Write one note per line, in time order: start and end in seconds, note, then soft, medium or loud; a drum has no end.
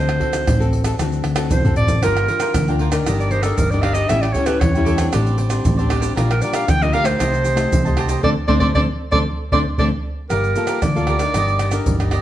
0.00 0.18 D2 loud
0.00 0.44 D3 medium
0.00 0.16 C4 medium
0.00 0.16 F#4 medium
0.00 0.16 A4 medium
0.00 0.74 C5 medium
0.09 pandeiro soft
0.09 tamborim medium
0.09 maracas soft
0.20 0.56 C4 medium
0.20 0.56 F#4 medium
0.20 0.56 A4 medium
0.20 pandeiro medium
0.20 surdo medium
0.33 pandeiro medium
0.33 tamborim medium
0.33 maracas medium
0.47 0.92 A1 loud
0.47 0.96 A2 medium
0.47 pandeiro medium
0.47 tamborim medium
0.47 maracas medium
0.47 surdo loud
0.59 0.82 C4 medium
0.59 0.82 F#4 medium
0.59 0.82 A4 medium
0.59 pandeiro soft
0.59 maracas soft
0.73 pandeiro medium
0.84 0.95 C4 medium
0.84 0.95 F#4 medium
0.84 0.95 A4 medium
0.84 pandeiro medium
0.84 tamborim medium
0.84 maracas medium
0.99 1.21 D2 medium
0.99 1.49 D3 medium
0.99 1.35 C4 medium
0.99 1.35 F#4 medium
0.99 1.35 A4 medium
0.99 pandeiro medium
0.99 tamborim medium
0.99 maracas medium
0.99 surdo medium
1.12 pandeiro soft
1.12 maracas soft
1.24 1.48 D2 medium
1.24 pandeiro medium
1.24 tamborim medium
1.36 1.60 C4 medium
1.36 1.60 F#4 medium
1.36 1.60 A4 medium
1.36 pandeiro medium
1.36 tamborim medium
1.36 maracas medium
1.51 1.75 C2 medium
1.51 2.01 A2 medium
1.51 1.76 C5 medium
1.51 surdo medium
1.51 pandeiro medium
1.51 maracas medium
1.51 surdo loud
1.65 2.01 C4 medium
1.65 2.01 F#4 medium
1.65 2.02 A4 medium
1.65 surdo medium
1.65 pandeiro soft
1.65 maracas soft
1.76 2.00 A1 medium
1.76 2.05 D5 loud
1.76 pandeiro medium
1.88 pandeiro medium
1.88 maracas medium
1.88 surdo medium
2.02 2.26 G1 loud
2.02 2.52 G3 medium
2.02 2.18 D4 medium
2.02 2.27 F4 medium
2.02 2.18 F4 medium
2.02 2.28 A#4 medium
2.02 2.81 A#4 medium
2.02 2.19 A#4 medium
2.02 2.28 D5 medium
2.02 2.29 G5 medium
2.02 pandeiro medium
2.02 tamborim medium
2.02 maracas medium
2.02 surdo medium
2.17 pandeiro soft
2.17 tamborim medium
2.17 maracas soft
2.28 2.63 D4 medium
2.28 2.39 F4 soft
2.28 2.64 F4 medium
2.28 2.40 A#4 medium
2.28 2.64 A#4 medium
2.28 2.40 D5 soft
2.28 2.41 G5 medium
2.28 pandeiro medium
2.40 2.50 F4 medium
2.40 2.51 A#4 medium
2.40 2.51 D5 medium
2.40 2.51 G5 medium
2.40 pandeiro medium
2.40 tamborim medium
2.40 maracas medium
2.54 2.99 D2 loud
2.54 3.04 D3 medium
2.54 pandeiro medium
2.54 tamborim medium
2.54 maracas medium
2.54 surdo loud
2.68 2.90 D4 medium
2.68 2.90 F4 medium
2.68 2.90 A#4 medium
2.68 2.79 A#4 soft
2.68 2.80 D5 soft
2.68 2.80 G5 soft
2.68 pandeiro soft
2.68 maracas soft
2.79 2.92 F4 medium
2.79 2.93 A#4 medium
2.79 2.92 D5 medium
2.79 2.91 G5 medium
2.79 pandeiro medium
2.92 3.41 D4 medium
2.92 3.40 D#4 medium
2.92 3.41 A#4 medium
2.92 3.06 A#4 soft
2.92 3.05 D5 soft
2.92 3.05 G5 soft
2.92 pandeiro medium
2.92 tamborim medium
2.92 maracas medium
3.06 3.51 G1 medium
3.06 3.56 G3 medium
3.06 3.30 D4 medium
3.06 3.31 G4 medium
3.06 3.33 D5 medium
3.06 3.32 D#5 medium
3.06 pandeiro medium
3.06 tamborim medium
3.06 maracas medium
3.06 surdo medium
3.20 3.33 D5 medium
3.20 pandeiro soft
3.20 maracas soft
3.31 3.44 D4 soft
3.31 3.44 G4 medium
3.31 3.44 C5 medium
3.31 3.43 D5 medium
3.31 3.44 D#5 medium
3.31 pandeiro medium
3.43 3.67 D4 medium
3.43 3.67 D#4 medium
3.43 3.71 G4 soft
3.43 3.59 A4 medium
3.43 3.67 A#4 medium
3.43 3.70 D5 soft
3.43 3.70 D#5 soft
3.43 pandeiro medium
3.43 tamborim medium
3.43 maracas medium
3.57 4.03 G1 medium
3.57 4.08 G3 medium
3.57 3.72 A#4 medium
3.57 pandeiro medium
3.57 maracas medium
3.57 surdo loud
3.71 4.09 D4 medium
3.71 4.09 D#4 medium
3.71 3.81 G4 soft
3.71 4.10 A#4 medium
3.71 3.84 D5 medium
3.71 3.83 D5 soft
3.71 3.82 D#5 soft
3.71 pandeiro soft
3.71 maracas soft
3.82 3.92 D4 medium
3.82 3.93 G4 medium
3.82 3.94 D5 medium
3.82 3.93 D#5 medium
3.82 3.96 F5 loud
3.82 pandeiro medium
3.82 tamborim medium
3.94 4.04 D4 medium
3.94 4.05 G4 medium
3.94 4.05 D5 medium
3.94 4.10 D#5 medium
3.94 4.05 D#5 medium
3.94 pandeiro medium
3.94 maracas medium
4.09 4.32 A1 loud
4.09 4.60 A2 medium
4.09 4.26 G3 medium
4.09 4.32 G4 medium
4.09 4.33 A4 medium
4.09 4.34 C#5 medium
4.09 4.23 E5 loud
4.09 4.34 G5 medium
4.09 pandeiro medium
4.09 tamborim medium
4.09 maracas medium
4.09 surdo medium
4.13 4.27 C#4 medium
4.13 4.27 E4 medium
4.21 4.34 D5 medium
4.21 pandeiro soft
4.21 tamborim medium
4.21 maracas soft
4.33 4.45 G4 soft
4.33 4.45 A4 medium
4.33 4.48 C#5 medium
4.33 4.46 C#5 medium
4.33 4.46 G5 medium
4.33 pandeiro medium
4.33 maracas medium
4.33 surdo medium
4.37 4.72 G3 medium
4.37 4.72 C#4 medium
4.37 4.72 E4 medium
4.46 4.57 G4 medium
4.46 4.57 A4 medium
4.46 4.62 B4 medium
4.46 4.57 C#5 medium
4.46 4.57 G5 medium
4.46 pandeiro medium
4.46 tamborim medium
4.46 maracas medium
4.60 5.06 E2 loud
4.60 5.12 E3 medium
4.60 5.13 C#5 medium
4.60 pandeiro medium
4.60 tamborim medium
4.60 maracas medium
4.60 surdo loud
4.74 4.97 G3 medium
4.74 4.98 C#4 medium
4.74 4.98 E4 medium
4.74 4.85 A4 soft
4.74 4.85 C#5 soft
4.74 4.86 G5 medium
4.74 pandeiro soft
4.74 maracas soft
4.85 4.98 G4 medium
4.85 4.99 A4 medium
4.85 4.97 C#5 medium
4.85 4.96 G5 medium
4.85 pandeiro medium
4.97 5.48 G3 medium
4.97 5.48 C4 medium
4.97 5.48 D4 medium
4.97 5.12 A4 soft
4.97 5.12 C#5 soft
4.97 5.11 G5 medium
4.97 pandeiro medium
4.97 tamborim medium
4.97 maracas medium
5.12 5.58 A1 medium
5.12 5.64 A2 medium
5.12 5.36 D4 medium
5.12 5.37 G4 medium
5.12 5.38 C5 medium
5.12 5.37 D5 medium
5.12 pandeiro medium
5.12 tamborim medium
5.12 maracas medium
5.12 surdo medium
5.26 pandeiro soft
5.26 maracas soft
5.37 5.50 D4 soft
5.37 5.50 G4 soft
5.37 5.50 C5 medium
5.37 5.49 D5 medium
5.37 pandeiro medium
5.50 5.74 G3 medium
5.50 5.74 C4 medium
5.50 5.74 D4 medium
5.50 5.77 G4 soft
5.50 5.76 C5 soft
5.50 5.76 D5 soft
5.50 pandeiro medium
5.50 tamborim medium
5.50 maracas medium
5.65 6.10 A1 loud
5.65 6.14 A2 medium
5.65 pandeiro medium
5.65 maracas medium
5.65 surdo loud
5.77 6.15 G3 medium
5.77 6.16 C4 medium
5.77 6.16 D4 medium
5.77 5.89 G4 soft
5.77 5.89 C5 soft
5.77 5.90 D5 medium
5.77 pandeiro soft
5.77 maracas soft
5.89 5.99 D4 medium
5.89 6.00 G4 medium
5.89 6.00 C5 medium
5.89 6.01 D5 medium
5.89 pandeiro medium
5.89 tamborim medium
5.89 maracas medium
6.00 6.11 D4 medium
6.00 6.12 G4 medium
6.00 6.12 C5 medium
6.00 6.12 D5 medium
6.00 pandeiro medium
6.00 maracas medium
6.16 6.39 A#1 loud
6.16 6.66 A#2 medium
6.16 6.32 G3 medium
6.16 6.33 D4 medium
6.16 6.33 F4 medium
6.16 6.41 G4 medium
6.16 6.42 A#4 medium
6.16 6.42 D5 medium
6.16 6.42 F5 medium
6.16 pandeiro medium
6.16 tamborim medium
6.16 maracas medium
6.16 surdo medium
6.31 6.44 A#4 medium
6.31 pandeiro soft
6.31 tamborim medium
6.31 maracas soft
6.42 6.67 G3 medium
6.42 6.67 D4 medium
6.42 6.67 F4 medium
6.42 6.52 G4 soft
6.42 6.53 A#4 medium
6.42 6.56 D5 medium
6.42 6.53 D5 medium
6.42 6.54 F5 medium
6.42 pandeiro medium
6.42 maracas medium
6.53 6.64 G4 medium
6.53 6.64 A#4 medium
6.53 6.64 D5 medium
6.53 6.71 F5 medium
6.53 6.65 F5 medium
6.53 pandeiro medium
6.53 tamborim medium
6.53 maracas medium
6.68 7.13 D2 loud
6.68 7.18 A#2 medium
6.68 6.84 G5 loud
6.68 pandeiro medium
6.68 tamborim medium
6.68 maracas medium
6.68 surdo loud
6.82 7.03 G3 medium
6.82 7.04 D4 medium
6.82 7.04 F4 medium
6.82 6.92 A#4 soft
6.82 6.93 D5 soft
6.82 6.95 D#5 loud
6.82 6.93 F5 soft
6.82 pandeiro soft
6.82 maracas soft
6.92 7.06 G4 medium
6.92 7.05 A#4 medium
6.92 7.04 D5 medium
6.92 7.08 F5 loud
6.92 7.03 F5 medium
6.92 pandeiro medium
7.04 7.53 A3 medium
7.04 7.54 D#4 medium
7.04 7.54 G4 medium
7.04 7.19 A#4 soft
7.04 8.23 C5 loud
7.04 7.18 F5 medium
7.04 pandeiro medium
7.04 tamborim medium
7.04 maracas medium
7.19 7.65 C2 loud
7.19 7.69 C3 medium
7.19 7.42 G4 medium
7.19 7.43 C5 medium
7.19 7.44 D#5 medium
7.19 7.44 A5 medium
7.19 pandeiro medium
7.19 tamborim medium
7.19 maracas medium
7.19 surdo medium
7.34 pandeiro soft
7.34 maracas soft
7.43 7.57 G4 medium
7.43 7.57 C5 medium
7.43 7.56 D#5 medium
7.43 7.55 A5 medium
7.43 pandeiro medium
7.43 maracas medium
7.55 7.79 A3 medium
7.55 7.79 D#4 medium
7.55 7.80 G4 medium
7.55 7.84 C5 soft
7.55 7.83 D#5 soft
7.55 7.83 A5 soft
7.55 pandeiro medium
7.55 tamborim medium
7.55 maracas medium
7.71 8.16 C2 loud
7.71 8.21 C3 medium
7.71 pandeiro medium
7.71 maracas medium
7.71 surdo loud
7.85 8.23 A3 medium
7.85 8.23 D#4 medium
7.85 8.23 G4 medium
7.85 7.97 C5 soft
7.85 7.97 D#5 soft
7.85 7.97 A5 medium
7.85 pandeiro soft
7.85 maracas soft
7.97 8.08 G4 medium
7.97 8.08 C5 medium
7.97 8.09 D#5 medium
7.97 8.09 A5 medium
7.97 pandeiro medium
7.97 tamborim medium
8.09 8.19 G4 medium
8.09 8.19 C5 medium
8.09 8.20 D#5 medium
8.09 8.20 A5 medium
8.09 pandeiro medium
8.09 maracas medium
8.23 8.33 D2 loud
8.23 8.33 A3 medium
8.23 8.32 C4 medium
8.23 8.33 D4 medium
8.23 8.32 A4 medium
8.23 8.32 C5 medium
8.23 8.30 D5 loud
8.23 8.32 D5 medium
8.23 surdo medium
8.48 8.59 D2 loud
8.48 8.58 A3 loud
8.48 8.58 C4 loud
8.48 8.58 D4 loud
8.48 8.57 A4 medium
8.48 8.57 C5 loud
8.48 8.57 D5 medium
8.48 8.55 D5 medium
8.48 surdo loud
8.60 8.72 D2 loud
8.60 8.70 A3 loud
8.60 8.70 C4 loud
8.60 8.70 D4 loud
8.60 8.70 A4 medium
8.60 8.70 C5 medium
8.60 8.67 D5 medium
8.60 8.70 D5 loud
8.60 surdo loud
8.75 8.85 D2 loud
8.75 8.84 A3 loud
8.75 8.84 C4 loud
8.75 8.84 D4 loud
8.75 8.84 A4 loud
8.75 8.84 C5 medium
8.75 8.84 D5 loud
8.75 8.81 D5 loud
8.75 surdo loud
9.12 9.23 D2 medium
9.12 9.22 A3 medium
9.12 9.22 C4 loud
9.12 9.22 D4 loud
9.12 9.21 A4 medium
9.12 9.21 C5 medium
9.12 9.21 D5 loud
9.12 9.19 D5 loud
9.12 surdo loud
9.52 9.62 D2 loud
9.52 9.62 A3 loud
9.52 9.62 C4 loud
9.52 9.62 D4 loud
9.52 9.61 A4 medium
9.52 9.61 C5 medium
9.52 9.61 D5 loud
9.52 9.59 D5 loud
9.52 surdo loud
9.78 9.89 D2 loud
9.78 9.88 A3 loud
9.78 9.88 C4 loud
9.78 9.88 D4 medium
9.78 9.87 A4 loud
9.78 9.87 C5 medium
9.78 9.87 D5 medium
9.78 9.85 D5 medium
9.78 surdo loud
10.29 10.53 G1 loud
10.29 10.80 G3 soft
10.29 10.54 G4 medium
10.29 10.79 A#4 medium
10.29 10.55 A#4 medium
10.29 10.56 D5 medium
10.29 10.56 F5 medium
10.29 pandeiro medium
10.29 tamborim medium
10.29 maracas medium
10.29 surdo medium
10.44 pandeiro soft
10.44 maracas soft
10.55 10.81 A#3 medium
10.55 10.81 F4 medium
10.55 10.67 G4 soft
10.55 10.82 A4 medium
10.55 10.68 A#4 soft
10.55 10.67 D5 soft
10.55 10.68 F5 soft
10.55 pandeiro medium
10.55 maracas medium
10.67 10.78 G4 medium
10.67 10.78 A#4 medium
10.67 10.78 D5 medium
10.67 10.79 F5 medium
10.67 pandeiro medium
10.67 tamborim medium
10.67 maracas medium
10.82 11.27 D2 medium
10.82 11.32 D3 medium
10.82 12.08 D5 loud
10.82 pandeiro medium
10.82 tamborim medium
10.82 maracas medium
10.82 surdo loud
10.96 11.18 A#3 medium
10.96 11.18 F4 medium
10.96 11.18 A4 medium
10.96 11.08 A#4 soft
10.96 11.08 D5 soft
10.96 11.08 F5 medium
10.96 pandeiro soft
10.96 maracas soft
11.07 11.20 G4 medium
11.07 11.21 A#4 medium
11.07 11.20 D5 medium
11.07 11.19 F5 medium
11.07 pandeiro medium
11.07 tamborim medium
11.19 11.68 D4 medium
11.19 11.69 D#4 medium
11.19 11.69 A#4 medium
11.19 11.34 A#4 soft
11.19 11.34 D5 soft
11.19 11.33 F5 soft
11.19 pandeiro medium
11.19 tamborim medium
11.19 maracas medium
11.34 11.79 G1 medium
11.34 11.84 G3 medium
11.34 11.59 D4 medium
11.34 11.60 G4 medium
11.34 11.61 D5 medium
11.34 11.60 D#5 medium
11.34 pandeiro medium
11.34 tamborim medium
11.34 maracas medium
11.34 surdo medium
11.48 pandeiro soft
11.48 maracas soft
11.59 11.72 D4 soft
11.59 11.73 G4 medium
11.59 11.71 D5 medium
11.59 11.72 D#5 soft
11.59 pandeiro medium
11.59 tamborim medium
11.59 maracas medium
11.71 11.95 D4 medium
11.71 11.95 D#4 medium
11.71 11.99 G4 soft
11.71 11.95 A#4 medium
11.71 11.98 D5 soft
11.71 11.98 D#5 soft
11.71 pandeiro medium
11.71 tamborim medium
11.71 maracas medium
11.86 12.22 G1 medium
11.86 12.22 G3 medium
11.86 pandeiro medium
11.86 maracas medium
11.86 surdo loud
12.00 12.22 D4 medium
12.00 12.22 D#4 medium
12.00 12.10 G4 soft
12.00 12.22 A#4 medium
12.00 12.12 D5 soft
12.00 12.11 D#5 soft
12.00 pandeiro soft
12.00 tamborim medium
12.00 maracas soft
12.11 12.22 D4 medium
12.11 12.22 G4 medium
12.11 12.22 D5 medium
12.11 12.22 D#5 medium
12.11 pandeiro medium
12.11 tamborim medium